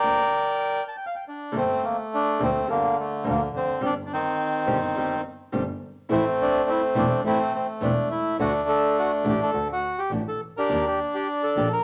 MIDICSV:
0, 0, Header, 1, 4, 480
1, 0, Start_track
1, 0, Key_signature, -2, "minor"
1, 0, Tempo, 591133
1, 1241, Time_signature, 4, 2, 24, 8
1, 1714, Tempo, 569801
1, 6514, Tempo, 577478
1, 9863, End_track
2, 0, Start_track
2, 0, Title_t, "Bandoneon"
2, 0, Program_c, 0, 23
2, 0, Note_on_c, 0, 70, 62
2, 0, Note_on_c, 0, 74, 68
2, 0, Note_on_c, 0, 79, 96
2, 675, Note_off_c, 0, 70, 0
2, 676, Note_off_c, 0, 74, 0
2, 679, Note_off_c, 0, 79, 0
2, 715, Note_on_c, 0, 81, 59
2, 783, Note_off_c, 0, 81, 0
2, 786, Note_on_c, 0, 79, 69
2, 856, Note_off_c, 0, 79, 0
2, 862, Note_on_c, 0, 77, 72
2, 932, Note_off_c, 0, 77, 0
2, 940, Note_on_c, 0, 79, 64
2, 1009, Note_off_c, 0, 79, 0
2, 1039, Note_on_c, 0, 62, 74
2, 1261, Note_on_c, 0, 57, 72
2, 1266, Note_off_c, 0, 62, 0
2, 1277, Note_on_c, 0, 60, 92
2, 1495, Note_on_c, 0, 58, 79
2, 1502, Note_off_c, 0, 60, 0
2, 1598, Note_off_c, 0, 58, 0
2, 1743, Note_on_c, 0, 62, 101
2, 1979, Note_off_c, 0, 62, 0
2, 1979, Note_on_c, 0, 60, 94
2, 2175, Note_off_c, 0, 57, 0
2, 2193, Note_off_c, 0, 60, 0
2, 2207, Note_on_c, 0, 50, 81
2, 2208, Note_on_c, 0, 58, 95
2, 2426, Note_off_c, 0, 58, 0
2, 2462, Note_on_c, 0, 57, 81
2, 2675, Note_off_c, 0, 57, 0
2, 2712, Note_on_c, 0, 58, 86
2, 2813, Note_off_c, 0, 58, 0
2, 2937, Note_on_c, 0, 60, 90
2, 3132, Note_off_c, 0, 50, 0
2, 3153, Note_off_c, 0, 60, 0
2, 3180, Note_on_c, 0, 62, 103
2, 3258, Note_off_c, 0, 62, 0
2, 3359, Note_on_c, 0, 62, 65
2, 3409, Note_off_c, 0, 62, 0
2, 3413, Note_on_c, 0, 51, 70
2, 3413, Note_on_c, 0, 60, 97
2, 4328, Note_off_c, 0, 51, 0
2, 4328, Note_off_c, 0, 60, 0
2, 5089, Note_on_c, 0, 57, 73
2, 5092, Note_on_c, 0, 60, 75
2, 5096, Note_on_c, 0, 64, 90
2, 5199, Note_off_c, 0, 64, 0
2, 5342, Note_on_c, 0, 62, 92
2, 5574, Note_off_c, 0, 62, 0
2, 5577, Note_on_c, 0, 64, 85
2, 5679, Note_off_c, 0, 64, 0
2, 5814, Note_on_c, 0, 62, 100
2, 6007, Note_off_c, 0, 57, 0
2, 6008, Note_off_c, 0, 60, 0
2, 6028, Note_off_c, 0, 62, 0
2, 6053, Note_on_c, 0, 57, 86
2, 6053, Note_on_c, 0, 64, 108
2, 6056, Note_on_c, 0, 60, 74
2, 6157, Note_off_c, 0, 64, 0
2, 6281, Note_off_c, 0, 60, 0
2, 6294, Note_on_c, 0, 60, 87
2, 6398, Note_off_c, 0, 60, 0
2, 6533, Note_on_c, 0, 62, 97
2, 6746, Note_off_c, 0, 62, 0
2, 6763, Note_on_c, 0, 64, 92
2, 6969, Note_off_c, 0, 57, 0
2, 6981, Note_off_c, 0, 64, 0
2, 7006, Note_on_c, 0, 57, 69
2, 7006, Note_on_c, 0, 62, 75
2, 7006, Note_on_c, 0, 66, 100
2, 7111, Note_off_c, 0, 66, 0
2, 7244, Note_on_c, 0, 69, 102
2, 7484, Note_off_c, 0, 69, 0
2, 7498, Note_on_c, 0, 66, 91
2, 7600, Note_off_c, 0, 66, 0
2, 7742, Note_on_c, 0, 67, 88
2, 7839, Note_off_c, 0, 67, 0
2, 7860, Note_on_c, 0, 69, 93
2, 7924, Note_off_c, 0, 57, 0
2, 7924, Note_off_c, 0, 62, 0
2, 8070, Note_off_c, 0, 69, 0
2, 8108, Note_on_c, 0, 66, 87
2, 8325, Note_on_c, 0, 67, 79
2, 8337, Note_off_c, 0, 66, 0
2, 8431, Note_off_c, 0, 67, 0
2, 8569, Note_on_c, 0, 69, 85
2, 8674, Note_off_c, 0, 69, 0
2, 8812, Note_on_c, 0, 70, 94
2, 8821, Note_on_c, 0, 62, 75
2, 8824, Note_on_c, 0, 67, 67
2, 9048, Note_off_c, 0, 67, 0
2, 9051, Note_off_c, 0, 70, 0
2, 9060, Note_on_c, 0, 67, 78
2, 9163, Note_off_c, 0, 67, 0
2, 9291, Note_on_c, 0, 67, 89
2, 9396, Note_off_c, 0, 67, 0
2, 9526, Note_on_c, 0, 69, 91
2, 9738, Note_off_c, 0, 62, 0
2, 9768, Note_off_c, 0, 69, 0
2, 9772, Note_on_c, 0, 70, 96
2, 9863, Note_off_c, 0, 70, 0
2, 9863, End_track
3, 0, Start_track
3, 0, Title_t, "Nylon-string guitar"
3, 0, Program_c, 1, 24
3, 22, Note_on_c, 1, 50, 47
3, 26, Note_on_c, 1, 58, 52
3, 28, Note_on_c, 1, 62, 54
3, 29, Note_on_c, 1, 53, 53
3, 30, Note_on_c, 1, 67, 60
3, 169, Note_off_c, 1, 50, 0
3, 172, Note_off_c, 1, 58, 0
3, 172, Note_off_c, 1, 62, 0
3, 173, Note_off_c, 1, 53, 0
3, 174, Note_off_c, 1, 67, 0
3, 1231, Note_on_c, 1, 50, 84
3, 1233, Note_on_c, 1, 55, 85
3, 1235, Note_on_c, 1, 62, 84
3, 1237, Note_on_c, 1, 58, 87
3, 1241, Note_on_c, 1, 69, 84
3, 1310, Note_off_c, 1, 50, 0
3, 1311, Note_off_c, 1, 55, 0
3, 1312, Note_off_c, 1, 62, 0
3, 1313, Note_off_c, 1, 58, 0
3, 1315, Note_off_c, 1, 69, 0
3, 1948, Note_on_c, 1, 50, 83
3, 1953, Note_on_c, 1, 58, 89
3, 1954, Note_on_c, 1, 55, 85
3, 1955, Note_on_c, 1, 62, 89
3, 1959, Note_on_c, 1, 69, 87
3, 2028, Note_off_c, 1, 50, 0
3, 2030, Note_off_c, 1, 58, 0
3, 2031, Note_off_c, 1, 55, 0
3, 2031, Note_off_c, 1, 62, 0
3, 2034, Note_off_c, 1, 69, 0
3, 2183, Note_on_c, 1, 50, 67
3, 2186, Note_on_c, 1, 55, 67
3, 2192, Note_on_c, 1, 62, 71
3, 2193, Note_on_c, 1, 58, 71
3, 2195, Note_on_c, 1, 69, 70
3, 2332, Note_off_c, 1, 50, 0
3, 2334, Note_off_c, 1, 55, 0
3, 2336, Note_off_c, 1, 62, 0
3, 2337, Note_off_c, 1, 58, 0
3, 2338, Note_off_c, 1, 69, 0
3, 2662, Note_on_c, 1, 50, 81
3, 2668, Note_on_c, 1, 58, 80
3, 2669, Note_on_c, 1, 55, 92
3, 2674, Note_on_c, 1, 62, 88
3, 2676, Note_on_c, 1, 69, 86
3, 2746, Note_off_c, 1, 50, 0
3, 2749, Note_off_c, 1, 58, 0
3, 2750, Note_off_c, 1, 55, 0
3, 2752, Note_off_c, 1, 62, 0
3, 2753, Note_off_c, 1, 69, 0
3, 3145, Note_on_c, 1, 51, 81
3, 3145, Note_on_c, 1, 55, 97
3, 3150, Note_on_c, 1, 60, 91
3, 3151, Note_on_c, 1, 62, 88
3, 3156, Note_on_c, 1, 67, 96
3, 3228, Note_off_c, 1, 51, 0
3, 3228, Note_off_c, 1, 55, 0
3, 3231, Note_off_c, 1, 60, 0
3, 3231, Note_off_c, 1, 62, 0
3, 3234, Note_off_c, 1, 67, 0
3, 3865, Note_on_c, 1, 51, 82
3, 3868, Note_on_c, 1, 55, 83
3, 3868, Note_on_c, 1, 60, 99
3, 3873, Note_on_c, 1, 62, 89
3, 3876, Note_on_c, 1, 67, 94
3, 3945, Note_off_c, 1, 51, 0
3, 3946, Note_off_c, 1, 55, 0
3, 3946, Note_off_c, 1, 60, 0
3, 3949, Note_off_c, 1, 62, 0
3, 3950, Note_off_c, 1, 67, 0
3, 4111, Note_on_c, 1, 51, 68
3, 4114, Note_on_c, 1, 55, 69
3, 4117, Note_on_c, 1, 62, 76
3, 4119, Note_on_c, 1, 67, 71
3, 4121, Note_on_c, 1, 60, 75
3, 4255, Note_off_c, 1, 51, 0
3, 4256, Note_off_c, 1, 55, 0
3, 4258, Note_off_c, 1, 62, 0
3, 4259, Note_off_c, 1, 67, 0
3, 4260, Note_off_c, 1, 60, 0
3, 4587, Note_on_c, 1, 55, 93
3, 4589, Note_on_c, 1, 51, 86
3, 4591, Note_on_c, 1, 60, 93
3, 4594, Note_on_c, 1, 62, 104
3, 4599, Note_on_c, 1, 67, 96
3, 4666, Note_off_c, 1, 55, 0
3, 4667, Note_off_c, 1, 51, 0
3, 4668, Note_off_c, 1, 60, 0
3, 4670, Note_off_c, 1, 62, 0
3, 4672, Note_off_c, 1, 67, 0
3, 5065, Note_on_c, 1, 52, 91
3, 5067, Note_on_c, 1, 60, 109
3, 5068, Note_on_c, 1, 64, 105
3, 5070, Note_on_c, 1, 57, 95
3, 5145, Note_off_c, 1, 52, 0
3, 5145, Note_off_c, 1, 60, 0
3, 5146, Note_off_c, 1, 64, 0
3, 5147, Note_off_c, 1, 57, 0
3, 5787, Note_on_c, 1, 52, 83
3, 5789, Note_on_c, 1, 57, 94
3, 5794, Note_on_c, 1, 60, 110
3, 5794, Note_on_c, 1, 64, 105
3, 5865, Note_off_c, 1, 52, 0
3, 5866, Note_off_c, 1, 57, 0
3, 5869, Note_off_c, 1, 60, 0
3, 5869, Note_off_c, 1, 64, 0
3, 6028, Note_on_c, 1, 52, 68
3, 6033, Note_on_c, 1, 57, 74
3, 6033, Note_on_c, 1, 60, 76
3, 6039, Note_on_c, 1, 64, 80
3, 6173, Note_off_c, 1, 52, 0
3, 6175, Note_off_c, 1, 57, 0
3, 6175, Note_off_c, 1, 60, 0
3, 6178, Note_off_c, 1, 64, 0
3, 6511, Note_on_c, 1, 52, 88
3, 6513, Note_on_c, 1, 57, 90
3, 6519, Note_on_c, 1, 60, 89
3, 6520, Note_on_c, 1, 64, 92
3, 6587, Note_off_c, 1, 52, 0
3, 6588, Note_off_c, 1, 57, 0
3, 6591, Note_off_c, 1, 60, 0
3, 6591, Note_off_c, 1, 64, 0
3, 6998, Note_on_c, 1, 50, 93
3, 7001, Note_on_c, 1, 57, 94
3, 7003, Note_on_c, 1, 62, 97
3, 7004, Note_on_c, 1, 66, 93
3, 7070, Note_off_c, 1, 50, 0
3, 7072, Note_off_c, 1, 57, 0
3, 7073, Note_off_c, 1, 62, 0
3, 7073, Note_off_c, 1, 66, 0
3, 7707, Note_on_c, 1, 50, 74
3, 7707, Note_on_c, 1, 57, 81
3, 7707, Note_on_c, 1, 62, 95
3, 7712, Note_on_c, 1, 66, 89
3, 7784, Note_off_c, 1, 50, 0
3, 7784, Note_off_c, 1, 57, 0
3, 7784, Note_off_c, 1, 62, 0
3, 7786, Note_off_c, 1, 66, 0
3, 7943, Note_on_c, 1, 50, 59
3, 7945, Note_on_c, 1, 57, 70
3, 7953, Note_on_c, 1, 62, 70
3, 7953, Note_on_c, 1, 66, 73
3, 8089, Note_off_c, 1, 50, 0
3, 8090, Note_off_c, 1, 57, 0
3, 8093, Note_off_c, 1, 62, 0
3, 8094, Note_off_c, 1, 66, 0
3, 8426, Note_on_c, 1, 57, 83
3, 8429, Note_on_c, 1, 50, 75
3, 8433, Note_on_c, 1, 66, 78
3, 8436, Note_on_c, 1, 62, 78
3, 8505, Note_off_c, 1, 57, 0
3, 8506, Note_off_c, 1, 50, 0
3, 8508, Note_off_c, 1, 66, 0
3, 8509, Note_off_c, 1, 62, 0
3, 8907, Note_on_c, 1, 51, 85
3, 8910, Note_on_c, 1, 55, 85
3, 8913, Note_on_c, 1, 62, 82
3, 8913, Note_on_c, 1, 67, 89
3, 8986, Note_off_c, 1, 51, 0
3, 8987, Note_off_c, 1, 55, 0
3, 8989, Note_off_c, 1, 62, 0
3, 8989, Note_off_c, 1, 67, 0
3, 9632, Note_on_c, 1, 51, 82
3, 9633, Note_on_c, 1, 55, 78
3, 9639, Note_on_c, 1, 62, 98
3, 9643, Note_on_c, 1, 67, 96
3, 9710, Note_off_c, 1, 51, 0
3, 9710, Note_off_c, 1, 55, 0
3, 9713, Note_off_c, 1, 62, 0
3, 9715, Note_off_c, 1, 67, 0
3, 9863, End_track
4, 0, Start_track
4, 0, Title_t, "Double bass"
4, 0, Program_c, 2, 43
4, 38, Note_on_c, 2, 38, 53
4, 238, Note_off_c, 2, 38, 0
4, 1247, Note_on_c, 2, 31, 91
4, 1443, Note_off_c, 2, 31, 0
4, 1958, Note_on_c, 2, 38, 103
4, 2160, Note_off_c, 2, 38, 0
4, 2208, Note_on_c, 2, 31, 62
4, 2405, Note_off_c, 2, 31, 0
4, 2681, Note_on_c, 2, 38, 103
4, 2883, Note_off_c, 2, 38, 0
4, 2924, Note_on_c, 2, 29, 60
4, 3155, Note_off_c, 2, 29, 0
4, 3161, Note_on_c, 2, 31, 100
4, 3362, Note_off_c, 2, 31, 0
4, 3875, Note_on_c, 2, 31, 108
4, 4076, Note_off_c, 2, 31, 0
4, 4119, Note_on_c, 2, 31, 69
4, 4319, Note_off_c, 2, 31, 0
4, 4601, Note_on_c, 2, 31, 110
4, 4800, Note_off_c, 2, 31, 0
4, 5082, Note_on_c, 2, 33, 115
4, 5279, Note_off_c, 2, 33, 0
4, 5794, Note_on_c, 2, 28, 111
4, 5995, Note_off_c, 2, 28, 0
4, 6032, Note_on_c, 2, 33, 70
4, 6235, Note_off_c, 2, 33, 0
4, 6521, Note_on_c, 2, 28, 107
4, 6718, Note_off_c, 2, 28, 0
4, 6993, Note_on_c, 2, 38, 105
4, 7194, Note_off_c, 2, 38, 0
4, 7708, Note_on_c, 2, 33, 96
4, 7911, Note_off_c, 2, 33, 0
4, 7951, Note_on_c, 2, 38, 67
4, 8153, Note_off_c, 2, 38, 0
4, 8421, Note_on_c, 2, 33, 93
4, 8629, Note_off_c, 2, 33, 0
4, 8912, Note_on_c, 2, 39, 98
4, 9116, Note_off_c, 2, 39, 0
4, 9634, Note_on_c, 2, 34, 102
4, 9837, Note_off_c, 2, 34, 0
4, 9863, End_track
0, 0, End_of_file